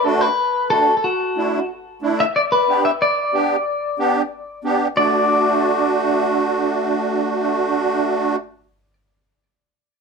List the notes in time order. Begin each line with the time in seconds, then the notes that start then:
0.04 A3 D4 F#4 A4
0.21 B4
0.70 A3 D4 F#4 A4
0.97 A4
1.04 F#4
1.37 A3 D4 E4
2.02 A3 D4 E4
2.20 E5
2.36 D5
2.52 B4
2.68 B3 D4 G4
2.85 E5
3.02 D5
3.33 B3 D4 G4
3.99 B3 D4 G4
4.64 B3 D4 G4
4.97 A3 D4 F#4 D5